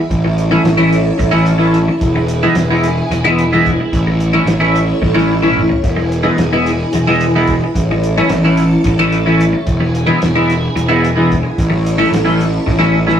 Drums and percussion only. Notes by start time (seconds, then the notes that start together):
0.11 kick, closed hi-hat
0.38 closed hi-hat
0.65 snare, closed hi-hat
0.93 closed hi-hat
1.19 kick, closed hi-hat
1.46 closed hi-hat
1.74 snare, closed hi-hat
2.01 kick, closed hi-hat
2.28 closed hi-hat
2.55 snare, closed hi-hat
2.83 snare, closed hi-hat
3.12 snare, closed hi-hat
3.38 closed hi-hat
3.66 kick, closed hi-hat
3.93 kick, closed hi-hat
4.20 closed hi-hat
4.47 snare, closed hi-hat
4.76 closed hi-hat
5.02 kick, snare
5.17 snare
5.43 mid tom
5.57 mid tom
5.70 floor tom
5.83 kick, closed hi-hat
6.12 closed hi-hat
6.38 snare, closed hi-hat
6.66 closed hi-hat
6.93 closed hi-hat
7.21 closed hi-hat
7.47 kick, snare, closed hi-hat
7.75 kick, closed hi-hat
8.03 closed hi-hat
8.29 snare, closed hi-hat
8.57 snare, closed hi-hat
8.84 kick, closed hi-hat
9.12 snare, closed hi-hat
9.41 closed hi-hat
9.67 kick, closed hi-hat
9.95 closed hi-hat
10.22 snare, closed hi-hat
10.50 snare, closed hi-hat
10.77 closed hi-hat
11.04 closed hi-hat
11.31 kick, closed hi-hat
11.58 kick, closed hi-hat
11.86 closed hi-hat
12.14 snare, closed hi-hat
12.40 snare, closed hi-hat
12.67 kick, snare
12.82 snare
13.09 snare